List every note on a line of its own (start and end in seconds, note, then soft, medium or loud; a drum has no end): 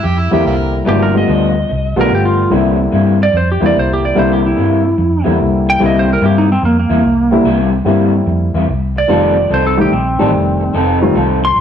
0.03 0.28 F2 medium
0.03 0.20 G4 medium
0.03 muted clean electric guitar stroke soft
0.18 0.31 E4 medium
0.31 0.43 E2 medium
0.31 0.43 C3 medium
0.31 0.83 D3 medium
0.31 0.83 G3 medium
0.31 0.43 G3 medium
0.31 0.83 A#3 medium
0.31 0.44 A#3 medium
0.31 0.84 C4 medium
0.31 0.44 E4 medium
0.31 0.84 E4 medium
0.31 0.45 G4 medium
0.44 0.80 C2 medium
0.44 0.55 F4 medium
0.44 0.54 G4 medium
0.44 0.79 A#4 medium
0.44 muted clean electric guitar stroke soft
0.72 muted clean electric guitar stroke medium
0.85 1.21 G1 medium
0.85 1.14 G2 medium
0.85 1.11 C#3 medium
0.85 1.13 F3 medium
0.85 1.11 F#3 soft
0.85 1.11 G#3 medium
0.85 1.12 A#3 medium
0.85 1.13 B3 medium
0.85 1.12 D4 medium
0.85 1.12 E4 medium
0.85 1.01 G4 medium
1.03 1.15 A#4 medium
1.13 1.50 D3 medium
1.13 1.50 G3 medium
1.13 1.50 A3 medium
1.13 1.50 B3 medium
1.13 1.50 F4 medium
1.13 muted clean electric guitar stroke soft
1.17 1.96 D#5 medium
1.27 1.63 D2 medium
1.27 1.55 G2 medium
1.27 1.54 F3 medium
1.27 1.54 B3 medium
1.27 1.54 D4 medium
1.55 muted clean electric guitar stroke soft
1.68 1.93 C2 medium
1.68 muted clean electric guitar stroke soft
1.96 2.08 B1 medium
1.96 2.09 G2 medium
1.96 2.48 D3 medium
1.96 2.09 F3 medium
1.96 2.48 G3 medium
1.96 2.49 A3 medium
1.96 2.09 B3 medium
1.96 2.49 B3 medium
1.96 2.10 D4 medium
1.96 2.49 F4 medium
2.01 2.12 A#4 medium
2.10 2.45 G1 medium
2.10 muted clean electric guitar stroke soft
2.15 2.26 G4 medium
2.25 2.51 F4 medium
2.38 muted clean electric guitar stroke medium
2.50 2.86 C2 medium
2.50 2.79 C3 medium
2.50 3.14 D3 medium
2.50 3.14 G3 medium
2.50 2.78 G3 medium
2.50 3.15 A#3 medium
2.50 2.78 A#3 medium
2.50 3.15 C4 medium
2.50 3.15 E4 medium
2.50 2.78 E4 medium
2.79 muted clean electric guitar stroke soft
2.92 3.27 G2 medium
2.92 3.20 C3 medium
2.92 3.20 G3 medium
2.92 3.20 A#3 medium
2.92 3.19 E4 medium
3.20 3.35 D5 medium
3.20 muted clean electric guitar stroke soft
3.33 3.57 F2 medium
3.33 3.49 C5 medium
3.33 muted clean electric guitar stroke soft
3.52 3.63 G4 medium
3.60 3.73 E2 medium
3.60 3.72 C3 medium
3.60 4.13 D3 medium
3.60 3.73 G3 medium
3.60 4.14 G3 medium
3.60 3.73 A#3 medium
3.60 4.14 A#3 medium
3.60 4.14 C4 medium
3.60 3.73 E4 medium
3.60 4.14 E4 medium
3.66 3.77 D5 medium
3.74 4.10 C2 medium
3.74 muted clean electric guitar stroke soft
3.79 3.91 C5 medium
3.93 4.05 G4 medium
4.02 4.17 D5 medium
4.02 muted clean electric guitar stroke medium
4.15 4.51 C2 loud
4.15 4.44 C3 medium
4.15 4.79 D3 medium
4.15 4.79 G3 medium
4.15 4.43 G3 medium
4.15 4.42 A#3 medium
4.15 4.79 A#3 medium
4.15 4.80 C4 medium
4.15 4.42 E4 medium
4.15 4.80 E4 medium
4.19 4.31 C5 medium
4.33 4.45 G4 medium
4.43 5.25 E4 medium
4.43 muted clean electric guitar stroke soft
4.56 4.92 G2 medium
4.56 4.85 C3 medium
4.56 4.84 G3 medium
4.56 4.84 A#3 medium
4.56 4.83 E4 medium
4.84 muted clean electric guitar stroke medium
4.98 5.22 F2 loud
4.98 muted clean electric guitar stroke soft
5.24 5.38 E2 medium
5.24 5.37 C3 medium
5.24 5.77 D3 medium
5.24 5.37 G3 medium
5.24 5.78 G3 medium
5.24 5.37 A#3 medium
5.24 5.78 A#3 medium
5.24 5.78 C4 medium
5.24 5.38 E4 medium
5.24 5.78 E4 medium
5.38 5.74 C2 medium
5.38 muted clean electric guitar stroke soft
5.66 5.82 G5 loud
5.66 muted clean electric guitar stroke medium
5.79 6.16 C2 loud
5.79 6.08 C3 medium
5.79 6.44 D3 medium
5.79 6.43 G3 medium
5.79 6.08 G3 medium
5.79 6.44 A#3 medium
5.79 6.07 A#3 medium
5.79 6.44 C4 medium
5.79 6.44 E4 medium
5.79 6.07 E4 loud
5.86 5.97 D#5 medium
5.99 6.10 C5 medium
6.08 muted clean electric guitar stroke soft
6.13 6.24 A#4 medium
6.21 6.56 G2 medium
6.21 6.49 C3 medium
6.21 6.48 G3 medium
6.21 6.48 A#3 medium
6.21 6.48 E4 medium
6.26 6.37 G4 medium
6.38 6.50 D#4 medium
6.49 6.64 C4 medium
6.49 muted clean electric guitar stroke soft
6.62 6.86 F2 medium
6.62 6.78 A#3 medium
6.62 muted clean electric guitar stroke medium
6.79 7.58 A#3 medium
6.90 7.01 E2 medium
6.90 7.02 C3 medium
6.90 7.03 G3 medium
6.90 7.03 A#3 medium
6.90 7.04 E4 loud
7.02 7.37 C2 medium
7.02 muted clean electric guitar stroke medium
7.31 7.43 D3 medium
7.31 7.43 G3 medium
7.31 7.44 A#3 medium
7.31 7.44 C4 medium
7.31 7.44 E4 medium
7.31 muted clean electric guitar stroke medium
7.44 7.79 C2 medium
7.44 7.73 C3 medium
7.44 7.73 G3 loud
7.44 7.72 A#3 medium
7.44 7.72 E4 medium
7.73 muted clean electric guitar stroke soft
7.84 8.20 G2 medium
7.84 8.14 C3 medium
7.84 8.49 D3 medium
7.84 8.49 G3 medium
7.84 8.13 G3 medium
7.84 8.49 A#3 soft
7.84 8.13 A#3 medium
7.84 8.49 C4 medium
7.84 8.49 E4 medium
7.84 8.13 E4 medium
8.14 muted clean electric guitar stroke soft
8.26 8.50 F2 medium
8.26 muted clean electric guitar stroke soft
8.54 8.66 E2 loud
8.54 8.66 C3 medium
8.54 8.67 G3 medium
8.54 8.67 A#3 medium
8.54 8.67 E4 medium
8.68 9.03 C2 medium
8.68 muted clean electric guitar stroke soft
8.96 9.50 D5 medium
8.96 muted clean electric guitar stroke medium
9.08 9.44 F1 medium
9.08 9.34 D#3 medium
9.08 9.37 F3 medium
9.08 9.34 G3 medium
9.08 9.34 A3 medium
9.08 9.34 C4 medium
9.08 9.37 C4 medium
9.08 9.36 D#4 medium
9.08 9.35 F4 medium
9.08 9.36 A4 loud
9.37 muted clean electric guitar stroke soft
9.50 9.85 C2 medium
9.50 9.78 F3 medium
9.50 9.78 C4 medium
9.50 9.78 D#4 medium
9.50 9.77 A4 medium
9.54 9.66 C5 medium
9.67 9.79 A4 medium
9.77 9.90 D#3 medium
9.77 9.90 G3 medium
9.77 9.90 A3 medium
9.77 9.90 C4 medium
9.77 9.90 D#4 medium
9.77 9.93 G4 medium
9.77 muted clean electric guitar stroke soft
9.91 10.15 A#1 medium
9.91 11.12 C4 medium
9.91 muted clean electric guitar stroke soft
10.19 10.31 A1 medium
10.19 10.71 D#3 medium
10.19 10.32 F3 medium
10.19 10.71 G3 medium
10.19 10.71 A3 medium
10.19 10.71 C4 medium
10.19 10.32 C4 medium
10.19 10.72 D4 medium
10.19 10.32 D#4 medium
10.19 10.32 A4 medium
10.33 10.69 F1 medium
10.33 muted clean electric guitar stroke soft
10.61 muted clean electric guitar stroke medium
10.74 11.09 F1 medium
10.74 11.02 F3 medium
10.74 11.01 C4 medium
10.74 11.01 D#4 medium
10.74 11.01 A4 loud
11.02 11.14 D#3 medium
11.02 11.14 G3 medium
11.02 11.14 A3 medium
11.02 11.14 C4 medium
11.02 11.14 F4 medium
11.02 muted clean electric guitar stroke soft
11.14 11.50 C2 loud
11.14 11.43 F3 medium
11.14 11.43 C4 medium
11.14 11.42 D#4 medium
11.14 11.42 A4 medium
11.43 11.57 C6 loud
11.43 muted clean electric guitar stroke soft
11.56 11.61 A#1 loud
11.56 muted clean electric guitar stroke soft